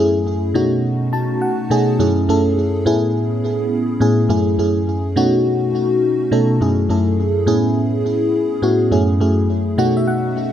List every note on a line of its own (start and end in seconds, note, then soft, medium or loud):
0.00 0.56 F#2 medium
0.00 0.55 A3 medium
0.00 0.55 C#4 medium
0.00 0.57 E4 medium
0.00 0.57 G#4 loud
0.54 1.48 B2 medium
0.54 1.49 A3 medium
0.54 1.49 C#4 medium
0.54 1.49 D#4 medium
0.54 1.49 F#4 loud
1.13 1.39 A5 medium
1.42 1.95 F#5 medium
1.70 1.94 B2 medium
1.70 1.94 A3 medium
1.70 1.94 C#4 medium
1.70 1.94 D#4 medium
1.70 1.94 G#4 loud
1.99 2.23 F#2 medium
1.99 2.23 A3 medium
1.99 2.23 C#4 medium
1.99 2.23 E4 medium
1.99 2.23 G#4 loud
2.28 2.86 F#2 medium
2.28 2.86 A3 medium
2.28 2.85 C#4 medium
2.28 2.85 E4 medium
2.28 2.87 A4 medium
2.86 3.79 A2 loud
2.86 3.80 B3 medium
2.86 3.80 C#4 medium
2.86 3.80 E4 medium
2.86 3.80 G#4 loud
4.00 4.24 A2 medium
4.00 4.24 B3 medium
4.00 4.24 C#4 medium
4.00 4.24 E4 medium
4.00 4.25 G#4 loud
4.29 4.53 F#2 medium
4.29 4.53 A3 medium
4.29 4.53 C#4 medium
4.29 4.53 E4 medium
4.29 4.53 G#4 loud
4.58 5.16 F#2 medium
4.58 5.15 A3 medium
4.58 5.15 C#4 medium
4.58 5.17 E4 medium
4.58 5.17 G#4 medium
5.16 6.10 B2 medium
5.16 6.10 A3 medium
5.16 6.10 C#4 medium
5.16 6.10 D#4 medium
5.16 6.11 F#4 loud
6.31 6.55 B2 medium
6.31 6.55 A3 medium
6.31 6.55 C#4 medium
6.31 6.55 D#4 medium
6.31 6.56 A4 medium
6.61 6.84 F#2 medium
6.61 6.84 A3 medium
6.61 6.84 C#4 medium
6.61 6.84 E4 medium
6.61 6.85 G#4 medium
6.89 7.47 F#2 medium
6.89 7.47 A3 medium
6.89 7.46 C#4 medium
6.89 7.46 E4 medium
6.89 7.48 A4 medium
7.46 8.41 A2 medium
7.46 8.41 B3 medium
7.46 8.41 C#4 medium
7.46 8.41 E4 medium
7.46 8.41 G#4 loud
8.62 8.86 A2 medium
8.62 8.86 B3 medium
8.62 8.86 C#4 medium
8.62 8.86 E4 medium
8.62 8.86 F#4 medium
8.91 9.15 F#2 medium
8.91 9.15 A3 medium
8.91 9.15 C#4 medium
8.91 9.15 E4 medium
8.91 9.15 G#4 loud
9.20 9.78 F#2 medium
9.20 9.77 A3 medium
9.20 9.77 C#4 medium
9.20 9.78 E4 medium
9.20 9.78 G#4 medium
9.78 10.52 B2 medium
9.78 10.52 A3 medium
9.78 10.52 C#4 medium
9.78 10.52 D#4 medium
9.78 10.52 F#4 loud
9.78 9.95 F#5 medium
9.97 10.06 E5 medium
10.07 10.51 F#5 medium